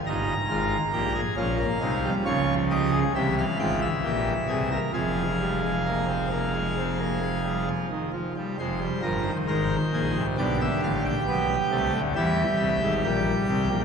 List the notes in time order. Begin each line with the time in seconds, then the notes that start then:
0.06 G1 G2 D#4 A#5
0.49 G#1 G#2 F4
0.93 A#1 A#2 G4
1.15 G#4
1.37 A#1 A#2 F3 C#4 F5
1.58 A#3
1.81 C2 C3 G#3 D#4
2.04 G3
2.26 C#2 C#3 F3 F4 C#5
2.71 G4 D#5
2.92 G#4
3.16 C2 C3 E3 G4 E5
3.38 F5
3.59 G#1 G#2 F4 G5
3.82 E5
4.04 A#1 A#2 G4
4.48 C2 C3 G#4
4.72 A#4
4.94 F1 F2 F3 G#4 F5
5.40 G3
5.63 G#3
5.86 A#3
6.08 C4
6.31 A#3
6.54 G#3
6.78 C4
6.99 A#3
7.21 G#3
7.44 G3
7.67 F3
7.90 D#3
8.13 F3
8.37 G3
8.59 F1 F2 G#3 C5
8.81 G3
9.02 G1 G2 F3 A#4
9.26 D#3
9.48 G#1 G#2 A#4 C5
9.93 A#1 A#2 G#4
10.16 C2 C3
10.38 B1 B2 D3 G4 D5
10.61 E5
10.83 A1 A2 F5
11.05 G5
11.28 B1 B2 B3
11.71 C2 C3 A3
11.94 D2 D3
12.16 E2 E3 G3 G4 E5
12.59 C2 C3
12.82 G#1 G#2
13.04 A#1 A#2 G5
13.49 C2 C3
13.71 A#1 A#2